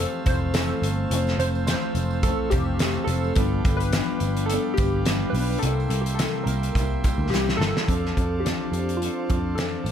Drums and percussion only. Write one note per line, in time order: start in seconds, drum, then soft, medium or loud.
0.00 tambourine soft
0.26 kick medium
0.26 closed hi-hat medium
0.26 tambourine medium
0.54 snare loud
0.54 closed hi-hat medium
0.54 tambourine medium
0.83 closed hi-hat medium
0.83 tambourine soft
1.11 closed hi-hat loud
1.11 tambourine soft
1.27 snare soft
1.27 tambourine soft
1.40 closed hi-hat medium
1.40 tambourine soft
1.55 tambourine soft
1.67 snare loud
1.67 closed hi-hat loud
1.67 tambourine medium
1.95 closed hi-hat medium
1.95 tambourine soft
2.10 tambourine soft
2.23 kick medium
2.23 closed hi-hat medium
2.23 tambourine soft
2.51 kick medium
2.51 closed hi-hat medium
2.51 tambourine medium
2.79 snare loud
2.79 closed hi-hat medium
2.79 tambourine medium
3.08 closed hi-hat medium
3.08 tambourine soft
3.24 tambourine soft
3.35 kick loud
3.35 closed hi-hat loud
3.35 tambourine soft
3.65 kick loud
3.65 closed hi-hat medium
3.65 tambourine soft
3.80 closed hi-hat medium
3.80 tambourine soft
3.93 snare loud
3.93 closed hi-hat loud
3.93 tambourine medium
4.20 closed hi-hat medium
4.20 tambourine soft
4.37 closed hi-hat soft
4.50 closed hi-hat medium
4.50 tambourine soft
4.77 kick medium
4.77 closed hi-hat medium
4.77 tambourine medium
5.06 snare loud
5.06 closed hi-hat medium
5.06 tambourine medium
5.34 open hi-hat medium
5.34 tambourine soft
5.50 tambourine soft
5.63 closed hi-hat loud
5.63 tambourine soft
5.80 tambourine soft
5.90 closed hi-hat medium
5.90 tambourine soft
6.06 closed hi-hat soft
6.06 tambourine soft
6.19 snare loud
6.19 closed hi-hat loud
6.19 tambourine medium
6.47 closed hi-hat medium
6.47 tambourine soft
6.63 closed hi-hat soft
6.75 kick loud
6.75 closed hi-hat medium
6.75 tambourine soft
7.04 kick medium
7.04 closed hi-hat medium
7.04 tambourine soft
7.34 snare medium
7.34 tambourine medium
7.49 snare medium
7.61 snare medium
7.61 tambourine soft
7.77 snare loud
7.88 kick medium
7.88 closed hi-hat medium
8.06 snare soft
8.17 kick medium
8.17 closed hi-hat medium
8.46 snare loud
8.46 closed hi-hat loud
8.73 closed hi-hat medium
8.89 closed hi-hat soft
9.02 closed hi-hat medium
9.30 kick medium
9.30 closed hi-hat medium
9.58 snare loud
9.58 closed hi-hat medium
9.86 closed hi-hat medium